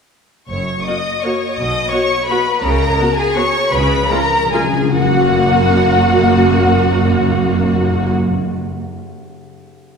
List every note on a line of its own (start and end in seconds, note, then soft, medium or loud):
0.49 0.80 F#1 soft
0.49 0.80 F#2 soft
0.49 0.83 C#5 soft
0.49 0.83 C#6 medium
0.85 0.96 A#3 soft
0.85 0.95 F#4 soft
0.85 1.22 D#5 medium
0.85 1.23 D#6 medium
1.22 1.32 A#3 soft
1.22 1.32 F#4 soft
1.22 1.57 C#5 soft
1.22 1.57 C#6 medium
1.55 1.85 B1 soft
1.55 1.86 B2 medium
1.55 1.91 D#5 medium
1.55 1.91 D#6 medium
1.91 2.00 B3 soft
1.91 2.00 F#4 soft
1.91 2.28 C#5 medium
1.91 2.28 C#6 medium
2.27 2.37 B3 medium
2.27 2.37 F#4 medium
2.27 2.62 B4 medium
2.27 2.62 B5 medium
2.63 2.92 C#2 medium
2.63 2.92 C#3 medium
2.63 3.17 A#4 medium
2.63 3.16 A#5 medium
3.00 3.08 B3 soft
3.00 3.08 F#4 medium
3.17 3.36 G#4 medium
3.17 3.36 G#5 medium
3.36 3.44 B3 medium
3.36 3.44 F#4 medium
3.36 3.73 C#5 medium
3.36 3.72 C#6 medium
3.72 4.04 C#2 medium
3.72 4.04 C#3 medium
3.72 4.11 B4 medium
3.72 4.10 B5 loud
3.96 4.03 C#3 soft
4.04 4.12 C#3 soft
4.11 4.20 C#3 soft
4.11 4.19 G#3 soft
4.11 4.19 F4 soft
4.11 4.51 A#4 medium
4.11 4.52 A#5 loud
4.22 4.29 C#3 soft
4.30 4.37 C#3 soft
4.38 4.45 C#3 medium
4.46 4.53 C#3 medium
4.53 4.62 C#3 medium
4.53 4.62 G#3 soft
4.53 4.62 F4 soft
4.53 4.94 G#4 medium
4.53 4.93 G#5 medium
4.63 4.71 C#3 medium
4.72 4.80 C#3 medium
4.81 4.88 C#3 medium
4.93 8.13 F#1 medium
4.93 5.00 F#2 medium
4.93 8.13 F#2 medium
4.93 8.14 A#3 medium
4.93 8.13 F#4 medium
4.93 8.14 F#4 medium
4.93 8.13 F#5 medium
5.00 5.08 F#2 medium
5.08 5.15 F#2 medium
5.15 5.22 F#2 medium
5.22 5.29 F#2 medium
5.29 5.36 F#2 medium
5.36 5.43 F#2 medium
5.43 5.50 F#2 medium
5.51 5.58 F#2 medium
5.58 5.65 F#2 medium
5.65 5.72 F#2 medium
5.73 5.80 F#2 medium
5.80 5.87 F#2 medium
5.87 5.94 F#2 medium
5.95 6.02 F#2 medium
6.02 6.09 F#2 medium
6.09 6.16 F#2 medium
6.16 6.23 F#2 medium
6.23 6.30 F#2 medium
6.30 6.37 F#2 medium
6.37 6.43 F#2 medium
6.43 6.50 F#2 medium
6.50 6.58 F#2 medium
6.58 6.65 F#2 medium
6.65 6.71 F#2 medium
6.71 6.79 F#2 medium
6.79 6.86 F#2 medium
6.86 6.93 F#2 medium
6.93 7.00 F#2 medium
7.01 7.08 F#2 medium
7.08 7.15 F#2 medium
7.15 7.23 F#2 medium
7.23 7.30 F#2 medium
7.31 7.38 F#2 medium
7.38 7.45 F#2 medium
7.45 7.52 F#2 medium
7.52 7.59 F#2 medium
7.59 7.66 F#2 medium
7.66 7.73 F#2 medium
7.73 7.80 F#2 medium
7.81 7.88 F#2 medium
7.88 7.95 F#2 medium
7.95 8.02 F#2 medium
8.02 8.09 F#2 medium
8.09 8.16 F#2 medium
8.16 8.24 F#2 medium
8.24 8.30 F#2 medium
8.30 8.38 F#2 medium
8.38 8.45 F#2 medium